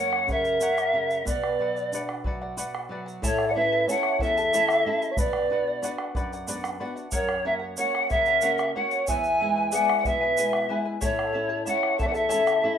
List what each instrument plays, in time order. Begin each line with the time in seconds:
Already playing: nylon-string guitar F#2 A#3, charango A#4 C#5 F#5, soft synth lead C#5, pan flute F#5
0.13 bombo rim
0.27 nylon-string guitar C#3, charango A#4 C#5 F#5, pan flute E5, bombo low, shaker
0.32 soft synth lead A#4
0.45 charango C#5 F#5, shaker
0.61 nylon-string guitar C#4, charango A#4 C#5 F#5, bombo rim, shaker
0.78 bombo rim, shaker
0.94 nylon-string guitar C#3, charango A#4 C#5 F#5
1.10 charango C#5 F#5, shaker
1.25 nylon-string guitar B2, charango B4 D5 F#5, pan flute D5, bombo rim, bombo low, shaker
1.31 soft synth lead B4
1.44 bombo rim
1.59 nylon-string guitar F#3, charango B4 D5 F#5
1.76 charango D5 F#5, bombo rim, shaker
1.92 nylon-string guitar D4, charango B4 D5 F#5, shaker
2.09 bombo rim
2.24 nylon-string guitar F#3, charango B4 D5 F#5, bombo low
2.41 charango D5 F#5, bombo rim
2.57 nylon-string guitar F#4, charango B4 D5 F#5, shaker
2.75 bombo rim
2.89 nylon-string guitar F#3, charango B4 D5 F#5
3.06 charango D5 F#5, shaker
3.22 nylon-string guitar A2, charango E4 A4 C#5 E5 A5, soft synth lead A4, pan flute C#5, bombo rim, bombo low, shaker
3.38 bombo rim
3.47 soft synth lead D5, pan flute F#5
3.54 nylon-string guitar A3 C#4 E4, charango E4 E5, soft synth lead B4, pan flute E5
3.58 charango A4 A5
3.72 charango E4 A4 A5
3.87 nylon-string guitar A3 C#4 E4, charango E4 A4 E5 A5, soft synth lead C#5, pan flute F#5, bombo rim, shaker
4.03 bombo rim
4.19 nylon-string guitar E2, charango E4 A4 E5 A5, soft synth lead A4, pan flute E5, bombo low, shaker
4.37 charango E4 A4 A5, shaker
4.53 nylon-string guitar A3 C#4 E4, charango E4 A4 C#5 E5 A5, bombo rim, shaker
4.69 bombo rim, shaker
4.85 nylon-string guitar A3 C#4 E4, charango E4 A4 E5 A5
5.02 charango E4 A4 A5, shaker
5.11 soft synth lead C#5, pan flute E5
5.17 nylon-string guitar B2, charango B4 D5 F#5, soft synth lead B4, pan flute D5, bombo rim, bombo low, shaker
5.33 bombo rim
5.50 nylon-string guitar B3 D4 F#4, charango B4 D5 F#5
5.67 charango D5 F#5
5.82 nylon-string guitar B3 D4 F#4, charango B4 D5 F#5, bombo rim, shaker
5.98 bombo rim
6.15 nylon-string guitar F#2, charango B4 D5 F#5, bombo low, shaker
6.33 charango D5 F#5, shaker
6.47 nylon-string guitar B3 D4 F#4, charango B4 D5 F#5, bombo rim, shaker
6.64 bombo rim, shaker
6.80 nylon-string guitar B3 D4 F#4, charango B4 D5 F#5
6.96 charango D5 F#5, shaker
7.12 nylon-string guitar F#2, charango A#4 C#5 F#5, soft synth lead A#4, pan flute C#5, bombo rim, bombo low, shaker
7.29 bombo rim
7.44 nylon-string guitar A#3 C#4 F#4, charango A#4 C#5 F#5, soft synth lead A#4, pan flute E5
7.59 charango C#5 F#5
7.77 nylon-string guitar A#3 C#4 F#4, charango A#4 C#5 F#5, soft synth lead C#5, pan flute F#5, bombo rim, shaker
7.95 bombo rim
8.10 nylon-string guitar C#3, charango A#4 C#5 F#5, soft synth lead A#4, pan flute E5, bombo low, shaker
8.26 charango C#5 F#5, shaker
8.41 nylon-string guitar A#3 C#4 F#4, charango A#4 C#5 F#5, bombo rim, shaker
8.58 bombo rim, shaker
8.75 nylon-string guitar A#3 C#4 F#4, charango A#4 C#5 F#5, soft synth lead C#5, pan flute F#5
8.91 charango C#5 F#5, shaker
9.07 nylon-string guitar E2, charango E4 B4 E5 G#5, soft synth lead E5, pan flute G#5, bombo rim, bombo low, shaker
9.24 shaker
9.41 nylon-string guitar G#3 B3 E4, charango E4 B4 E5 G#5, bombo rim
9.56 charango E4 B4 G#5, bombo rim
9.72 nylon-string guitar G#3 B3 E4, charango E4 G#4 B4 E5 G#5, soft synth lead D5, pan flute F#5, bombo rim, shaker
9.89 bombo rim
9.98 soft synth lead D5, pan flute F#5
10.04 nylon-string guitar B2, charango E4 B4 E5 G#5, soft synth lead B4, pan flute E5, bombo low, shaker
10.21 charango E4 B4 G#5
10.37 nylon-string guitar G#3 B3 E4, charango E4 B4 E5 G#5, shaker
10.53 bombo rim
10.69 nylon-string guitar G#3 B3 E4, charango E4 B4 E5 G#5, bombo rim
10.85 charango E4 B4 G#5
11.01 nylon-string guitar A2, charango E4 A4 C#5 E5 A5, soft synth lead A4, pan flute C#5, bombo rim, bombo low, shaker
11.19 bombo rim
11.33 nylon-string guitar A3 C#4 E4, charango E4 A4 E5 A5
11.49 charango E4 A4 A5
11.66 nylon-string guitar A3 C#4 E4, charango E4 A4 E5 A5, soft synth lead C#5, pan flute F#5, bombo rim, shaker
11.83 bombo rim
11.98 nylon-string guitar E2, charango E4 A4 E5 A5, soft synth lead A4, pan flute E5, bombo low, shaker
12.06 soft synth lead D5, pan flute F#5
12.12 charango E4 A4 A5, soft synth lead A4, pan flute E5, shaker
12.29 nylon-string guitar A3 C#4, charango E4 A4 C#5 E5 A5, bombo rim, shaker
12.33 nylon-string guitar E4
12.47 bombo rim, shaker
12.62 nylon-string guitar A3 C#4 E4, charango E4 A4 E5 A5